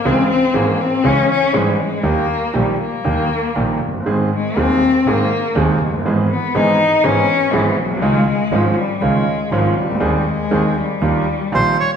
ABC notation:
X:1
M:4/4
L:1/16
Q:1/4=120
K:Ab
V:1 name="Bandoneon"
z16 | z16 | z16 | z16 |
z16 | z12 c2 d2 |]
V:2 name="Cello" clef=bass
C2 C2 B,2 C2 D2 D2 G,2 A,2 | B,4 G,2 B,8 z2 | z2 A,2 C4 B,4 A,3 z | z2 =B,2 E4 D4 =E,2 _G,2 |
A,2 A,2 F,2 G,2 A,4 F,2 G,2- | G,2 A,4 G,8 z2 |]
V:3 name="Grand piano" clef=bass
[D,,D,_F,A,DA]2 z2 [A,,,A,,F,A,DA]2 z2 [D,,D,F,A,DA]2 z2 [A,,,A,,F,A,DA]2 z2 | [E,,E,G,B,G]2 z2 [B,,,B,,E,G,B,G]2 z2 [E,,E,G,B,G]2 z2 [B,,,B,,E,G,B,G]2 z/2 F,,,/2 _G,,,/2 =G,,,/2 | [A,,,A,,E,A,CA]2 z2 [E,,,E,,E,A,CA]2 z2 [A,,,A,,E,A,CA]2 z2 [E,,,E,,E,A,CA]2 z/2 F,,,/2 _G,,,/2 =G,,,/2 | [^G,,,^G,,=E,^G,=B,^G]2 z2 [G,,,G,,E,G,B,G]2 z2 [G,,,G,,E,G,B,G]2 z2 [G,,,G,,E,G,B,G]2 z/2 _B,,,/2 =B,,,/2 C,,/2 |
[D,,D,E,A,DF]2 z2 [A,,,A,,E,A,DF]2 z2 [D,,D,E,A,DF]2 z2 [A,,,A,,E,A,DF]2 z/2 C,,/2 D,,/2 =D,,/2 | [E,,E,A,CA]2 z2 [E,,E,A,CA]2 z2 [E,,E,G,B,F]2 z2 [B,,,B,,E,G,B,F]2 z2 |]
V:4 name="Double bass" clef=bass
D,,2 z2 A,,,2 z2 D,,2 z2 A,,,2 z2 | E,,2 z2 B,,,2 z2 E,,2 z2 B,,,2 _G,,,2 | A,,,2 z2 E,,2 z2 A,,,2 z2 E,,2 _G,,,2 | ^G,,,2 z2 G,,,2 z2 G,,,2 z2 G,,,2 =B,,,2 |
D,,2 z2 A,,,2 z2 D,,2 z2 A,,,2 D,,2 | E,,2 z2 E,,2 z2 E,,2 z2 B,,,2 z2 |]